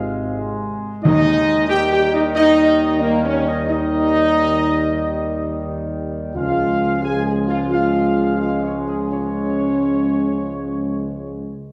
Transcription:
Already playing: tuba G#1, trombone section C3 G#3, french horn section F4, trumpet section F5
1.04 tuba D#2, timpani D#3, trombone section D#3, french horn section D#4, trumpet section D#5
1.69 trombone section G3, french horn section G4, trumpet section G5
1.92 french horn section G4, trumpet section G5
2.14 french horn section D#4, trumpet section D#5
2.35 french horn section D#4, trumpet section D#5
3.01 french horn section A#3, trumpet section A#4
3.25 french horn section C#4, trumpet section C#5
3.47 french horn section D#4, trumpet section D#5
3.69 french horn section D#4, trumpet section D#5
6.35 tuba C#2, trombone section F3 G#3, french horn section F4, trumpet section F5
7.02 french horn section G#4, trumpet section G#5
7.25 french horn section G#4, trumpet section G#5
7.48 french horn section F4, trumpet section F5
7.70 french horn section F4, trumpet section F5
8.38 french horn section F4, trumpet section F5
8.63 french horn section C#4, trumpet section C#5
8.86 french horn section G#3, trumpet section G#4
9.10 french horn section C#4, trumpet section C#5

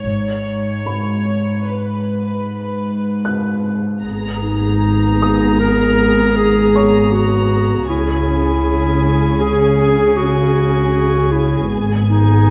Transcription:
0.04 double bass section G#1, cello section G#2, violin section C#5
0.86 felt piano B5
1.65 violin section B4
3.25 felt piano F#6
4.03 double bass section G#1, cello section G#2, viola section B3 G#4, violin section A#5
4.41 clarinet D#4
5.22 felt piano D#6
5.59 clarinet A#4
6.36 clarinet G#4
6.75 felt piano C#5 C#6
7.12 clarinet F#4
7.88 double bass section C#2, cello section C#3, viola section C#4 G#4, clarinet E4, violin section G#5
9.41 clarinet G#4
10.17 clarinet F#4
11.32 clarinet E4
11.70 double bass section G#1, cello section G#2, viola section B3 G#4, violin section G#5
12.09 clarinet D#4

